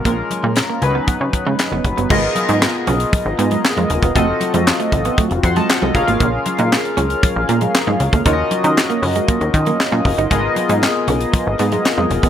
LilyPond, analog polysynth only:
\new Staff \with { instrumentName = "Analog polysynth" } { \time 4/4 \key gis \dorian \tempo 4 = 117 << { r1 | r1 | r2 r8 <ges'' c'''>16 <ees'' a''>16 <c'' ges''>16 <a' ees''>8 r16 | r1 |
r1 | r1 | } \\ { <gis bis cis' eis' ais'>4. <fis cis' dis' b'>2~ <fis cis' dis' b'>8 | <b eis' gis' ais' dis''>1 | <c' f' ges' a' ees''>2.~ <c' f' ges' a' ees''>8 <cis' eis' gis' ais' eis''>8~ | <cis' eis' gis' ais' eis''>1 |
<cis' eis' fis' ais' cis'' dis''>1 | <b eis' gis' ais' dis''>1 | } >> }